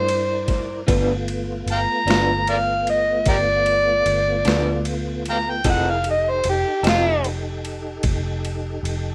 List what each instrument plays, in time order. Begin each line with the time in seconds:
Already playing: fingered electric bass G2, tonewheel organ E4 A#4 D5, harmonica C5
0.09 ride
0.48 kick, snare, ride
0.87 fingered electric bass G1, clean electric guitar G2 F3 B3 D4, tonewheel organ A3 B3 F4, kick, ride
1.28 ride
1.66 fingered electric bass G1, ride
1.72 harmonica F5 G5 A#5
2.06 fingered electric bass G1, clean electric guitar G2 F3 B3 D4, ride
2.10 snare
2.47 harmonica A#4 D5 F5, ride
2.87 harmonica D#5, ride
3.26 fingered electric bass G1, harmonica G4 A#4 D5, kick, ride
3.66 ride
4.06 fingered electric bass G1, ride
4.45 fingered electric bass D2, clean electric guitar G2 F3 B3 D4, snare, ride
4.85 ride
5.26 snare, ride
5.30 harmonica F5 G5 A#5
5.50 harmonica G5
5.64 fingered electric bass F1, clean electric guitar F3 C4 D#4 A4, tonewheel organ E4 G#4 A#4, kick, ride
5.69 harmonica F#5
5.90 harmonica F5
6.03 tonewheel organ D#4 G4 A4, ride
6.11 harmonica D#5
6.31 harmonica C5
6.44 fingered electric bass F1, ride
6.49 harmonica G4
6.83 fingered electric bass F1, clean electric guitar F3 C4 D#4 A4, snare, ride
6.88 harmonica F4
7.24 ride
7.65 ride
8.03 fingered electric bass F1, kick, ride
8.45 ride
8.83 fingered electric bass F1, ride